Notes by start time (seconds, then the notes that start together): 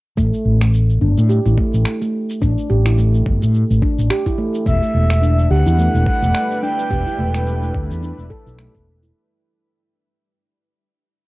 0.17 A1 A3, kick, cabasa
0.34 cabasa
0.45 A1
0.61 A3, finger snap, cabasa
0.74 cabasa
0.90 cabasa
1.01 G1 D4
1.18 A2, cabasa
1.29 G4, cabasa
1.46 A1 E4, cabasa
1.57 A3, kick
1.74 A1, cabasa
1.85 finger snap, cabasa
2.02 A3, cabasa
2.30 cabasa
2.42 A1 D4, kick, cabasa
2.58 cabasa
2.70 A1 G4
2.86 E4, finger snap, cabasa
2.98 A3, cabasa
3.14 cabasa
3.26 G1, kick
3.42 A2 A3, cabasa
3.54 cabasa
3.70 A1, cabasa
3.82 D4, kick
3.98 A1, cabasa
4.10 G4, finger snap, cabasa
4.26 E4, kick, cabasa
4.38 A3
4.54 cabasa
4.66 E1 G3 D4 E4 B4 E5, kick, cabasa
4.82 A3, cabasa
4.94 E1
5.10 finger snap, cabasa
5.22 D4, cabasa
5.39 cabasa
5.50 D2 G4 F#5
5.66 E2 E4, cabasa
5.78 A3, cabasa
5.94 E1, cabasa
6.06 F#5, kick
6.22 E1 A3, cabasa
6.34 finger snap, cabasa
6.51 cabasa
6.63 D4 G5
6.79 cabasa
6.90 E1 G4, kick, cabasa
7.07 E4, cabasa
7.18 E1 A3
7.34 finger snap, cabasa
7.47 cabasa
7.62 A3, cabasa
7.74 D2, kick
7.90 E2, cabasa
8.03 D4, cabasa
8.18 E1, cabasa
8.30 A4, kick
8.46 B1 E4, cabasa
8.58 A3, finger snap, cabasa
8.75 E1, kick, cabasa
9.03 E4, cabasa